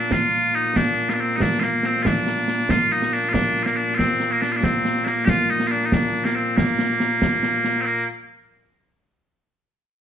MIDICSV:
0, 0, Header, 1, 3, 480
1, 0, Start_track
1, 0, Key_signature, -2, "major"
1, 0, Tempo, 430108
1, 131, Time_signature, 6, 3, 24, 8
1, 11163, End_track
2, 0, Start_track
2, 0, Title_t, "Bagpipes"
2, 0, Program_c, 0, 109
2, 0, Note_on_c, 0, 46, 89
2, 0, Note_on_c, 0, 58, 89
2, 0, Note_on_c, 0, 62, 93
2, 136, Note_off_c, 0, 62, 0
2, 136, Note_on_c, 0, 65, 111
2, 614, Note_off_c, 0, 65, 0
2, 614, Note_on_c, 0, 63, 100
2, 854, Note_off_c, 0, 63, 0
2, 854, Note_on_c, 0, 62, 100
2, 1222, Note_off_c, 0, 62, 0
2, 1222, Note_on_c, 0, 65, 62
2, 1269, Note_off_c, 0, 65, 0
2, 1269, Note_on_c, 0, 62, 62
2, 1342, Note_off_c, 0, 62, 0
2, 1342, Note_on_c, 0, 60, 79
2, 1521, Note_off_c, 0, 60, 0
2, 1521, Note_on_c, 0, 63, 82
2, 1585, Note_off_c, 0, 63, 0
2, 1585, Note_on_c, 0, 62, 107
2, 1783, Note_off_c, 0, 62, 0
2, 1783, Note_on_c, 0, 65, 79
2, 1828, Note_off_c, 0, 58, 0
2, 1828, Note_off_c, 0, 65, 0
2, 1828, Note_on_c, 0, 58, 79
2, 2073, Note_off_c, 0, 58, 0
2, 2073, Note_on_c, 0, 60, 95
2, 2261, Note_off_c, 0, 60, 0
2, 2261, Note_on_c, 0, 65, 93
2, 2305, Note_off_c, 0, 65, 0
2, 2305, Note_on_c, 0, 62, 93
2, 3021, Note_off_c, 0, 62, 0
2, 3021, Note_on_c, 0, 65, 110
2, 3256, Note_off_c, 0, 65, 0
2, 3256, Note_on_c, 0, 63, 90
2, 3497, Note_off_c, 0, 63, 0
2, 3497, Note_on_c, 0, 62, 93
2, 3672, Note_off_c, 0, 62, 0
2, 3672, Note_on_c, 0, 65, 94
2, 3719, Note_off_c, 0, 65, 0
2, 3719, Note_on_c, 0, 62, 94
2, 4053, Note_off_c, 0, 62, 0
2, 4053, Note_on_c, 0, 65, 79
2, 4091, Note_off_c, 0, 65, 0
2, 4091, Note_on_c, 0, 58, 79
2, 4201, Note_off_c, 0, 58, 0
2, 4201, Note_on_c, 0, 62, 80
2, 4405, Note_off_c, 0, 62, 0
2, 4405, Note_on_c, 0, 65, 106
2, 4441, Note_off_c, 0, 65, 0
2, 4442, Note_on_c, 0, 60, 106
2, 4815, Note_off_c, 0, 60, 0
2, 4815, Note_on_c, 0, 58, 78
2, 4929, Note_off_c, 0, 58, 0
2, 4929, Note_on_c, 0, 62, 96
2, 5047, Note_off_c, 0, 62, 0
2, 5047, Note_on_c, 0, 65, 70
2, 5095, Note_off_c, 0, 65, 0
2, 5095, Note_on_c, 0, 62, 70
2, 5177, Note_off_c, 0, 62, 0
2, 5177, Note_on_c, 0, 60, 86
2, 5629, Note_off_c, 0, 60, 0
2, 5629, Note_on_c, 0, 62, 75
2, 5666, Note_off_c, 0, 62, 0
2, 5666, Note_on_c, 0, 58, 75
2, 5860, Note_off_c, 0, 58, 0
2, 5860, Note_on_c, 0, 67, 112
2, 5903, Note_off_c, 0, 67, 0
2, 5903, Note_on_c, 0, 65, 112
2, 6139, Note_off_c, 0, 65, 0
2, 6139, Note_on_c, 0, 63, 89
2, 6328, Note_on_c, 0, 65, 91
2, 6329, Note_off_c, 0, 63, 0
2, 6377, Note_off_c, 0, 65, 0
2, 6377, Note_on_c, 0, 62, 91
2, 6535, Note_off_c, 0, 62, 0
2, 6535, Note_on_c, 0, 63, 69
2, 6624, Note_off_c, 0, 63, 0
2, 6624, Note_on_c, 0, 62, 92
2, 6971, Note_off_c, 0, 62, 0
2, 6971, Note_on_c, 0, 58, 73
2, 7092, Note_off_c, 0, 58, 0
2, 7092, Note_on_c, 0, 60, 76
2, 7333, Note_off_c, 0, 60, 0
2, 7333, Note_on_c, 0, 58, 85
2, 8720, Note_off_c, 0, 58, 0
2, 8720, Note_on_c, 0, 60, 92
2, 8770, Note_off_c, 0, 60, 0
2, 8770, Note_on_c, 0, 58, 92
2, 8994, Note_off_c, 0, 46, 0
2, 8994, Note_off_c, 0, 58, 0
2, 11163, End_track
3, 0, Start_track
3, 0, Title_t, "Drums"
3, 14, Note_on_c, 9, 38, 27
3, 121, Note_off_c, 9, 38, 0
3, 121, Note_on_c, 9, 35, 54
3, 121, Note_on_c, 9, 38, 92
3, 233, Note_off_c, 9, 35, 0
3, 233, Note_off_c, 9, 38, 0
3, 731, Note_on_c, 9, 38, 28
3, 843, Note_off_c, 9, 38, 0
3, 850, Note_on_c, 9, 35, 54
3, 850, Note_on_c, 9, 38, 98
3, 962, Note_off_c, 9, 35, 0
3, 962, Note_off_c, 9, 38, 0
3, 1096, Note_on_c, 9, 38, 27
3, 1208, Note_off_c, 9, 38, 0
3, 1217, Note_on_c, 9, 38, 74
3, 1329, Note_off_c, 9, 38, 0
3, 1455, Note_on_c, 9, 38, 26
3, 1567, Note_off_c, 9, 38, 0
3, 1567, Note_on_c, 9, 35, 62
3, 1567, Note_on_c, 9, 38, 96
3, 1679, Note_off_c, 9, 35, 0
3, 1679, Note_off_c, 9, 38, 0
3, 1695, Note_on_c, 9, 38, 28
3, 1802, Note_off_c, 9, 38, 0
3, 1802, Note_on_c, 9, 38, 79
3, 1914, Note_off_c, 9, 38, 0
3, 2045, Note_on_c, 9, 38, 74
3, 2156, Note_off_c, 9, 38, 0
3, 2289, Note_on_c, 9, 35, 63
3, 2289, Note_on_c, 9, 38, 105
3, 2401, Note_off_c, 9, 35, 0
3, 2401, Note_off_c, 9, 38, 0
3, 2529, Note_on_c, 9, 38, 80
3, 2640, Note_off_c, 9, 38, 0
3, 2649, Note_on_c, 9, 38, 31
3, 2761, Note_off_c, 9, 38, 0
3, 2767, Note_on_c, 9, 38, 79
3, 2878, Note_off_c, 9, 38, 0
3, 2890, Note_on_c, 9, 38, 31
3, 3002, Note_off_c, 9, 38, 0
3, 3004, Note_on_c, 9, 35, 65
3, 3004, Note_on_c, 9, 38, 113
3, 3115, Note_off_c, 9, 35, 0
3, 3115, Note_off_c, 9, 38, 0
3, 3373, Note_on_c, 9, 38, 79
3, 3485, Note_off_c, 9, 38, 0
3, 3614, Note_on_c, 9, 38, 31
3, 3725, Note_off_c, 9, 38, 0
3, 3730, Note_on_c, 9, 35, 60
3, 3730, Note_on_c, 9, 38, 99
3, 3841, Note_off_c, 9, 35, 0
3, 3841, Note_off_c, 9, 38, 0
3, 3966, Note_on_c, 9, 38, 27
3, 4078, Note_off_c, 9, 38, 0
3, 4085, Note_on_c, 9, 38, 69
3, 4197, Note_off_c, 9, 38, 0
3, 4328, Note_on_c, 9, 38, 26
3, 4439, Note_off_c, 9, 38, 0
3, 4453, Note_on_c, 9, 35, 55
3, 4453, Note_on_c, 9, 38, 83
3, 4564, Note_off_c, 9, 35, 0
3, 4564, Note_off_c, 9, 38, 0
3, 4567, Note_on_c, 9, 38, 23
3, 4678, Note_off_c, 9, 38, 0
3, 4686, Note_on_c, 9, 38, 67
3, 4798, Note_off_c, 9, 38, 0
3, 4931, Note_on_c, 9, 38, 75
3, 5043, Note_off_c, 9, 38, 0
3, 5170, Note_on_c, 9, 35, 52
3, 5170, Note_on_c, 9, 38, 93
3, 5282, Note_off_c, 9, 35, 0
3, 5282, Note_off_c, 9, 38, 0
3, 5414, Note_on_c, 9, 38, 74
3, 5525, Note_off_c, 9, 38, 0
3, 5536, Note_on_c, 9, 38, 28
3, 5648, Note_off_c, 9, 38, 0
3, 5651, Note_on_c, 9, 38, 69
3, 5763, Note_off_c, 9, 38, 0
3, 5887, Note_on_c, 9, 35, 62
3, 5887, Note_on_c, 9, 38, 103
3, 5998, Note_off_c, 9, 35, 0
3, 5998, Note_off_c, 9, 38, 0
3, 6245, Note_on_c, 9, 38, 78
3, 6357, Note_off_c, 9, 38, 0
3, 6485, Note_on_c, 9, 38, 32
3, 6596, Note_off_c, 9, 38, 0
3, 6609, Note_on_c, 9, 35, 62
3, 6609, Note_on_c, 9, 38, 105
3, 6720, Note_off_c, 9, 35, 0
3, 6720, Note_off_c, 9, 38, 0
3, 6855, Note_on_c, 9, 38, 29
3, 6967, Note_off_c, 9, 38, 0
3, 6977, Note_on_c, 9, 38, 83
3, 7089, Note_off_c, 9, 38, 0
3, 7337, Note_on_c, 9, 35, 65
3, 7337, Note_on_c, 9, 38, 107
3, 7449, Note_off_c, 9, 35, 0
3, 7449, Note_off_c, 9, 38, 0
3, 7460, Note_on_c, 9, 38, 29
3, 7572, Note_off_c, 9, 38, 0
3, 7574, Note_on_c, 9, 38, 86
3, 7686, Note_off_c, 9, 38, 0
3, 7699, Note_on_c, 9, 38, 29
3, 7811, Note_off_c, 9, 38, 0
3, 7815, Note_on_c, 9, 38, 83
3, 7926, Note_off_c, 9, 38, 0
3, 8055, Note_on_c, 9, 35, 56
3, 8055, Note_on_c, 9, 38, 102
3, 8166, Note_off_c, 9, 35, 0
3, 8166, Note_off_c, 9, 38, 0
3, 8291, Note_on_c, 9, 38, 78
3, 8403, Note_off_c, 9, 38, 0
3, 8416, Note_on_c, 9, 38, 31
3, 8528, Note_off_c, 9, 38, 0
3, 8530, Note_on_c, 9, 38, 75
3, 8642, Note_off_c, 9, 38, 0
3, 8659, Note_on_c, 9, 38, 32
3, 8771, Note_off_c, 9, 38, 0
3, 11163, End_track
0, 0, End_of_file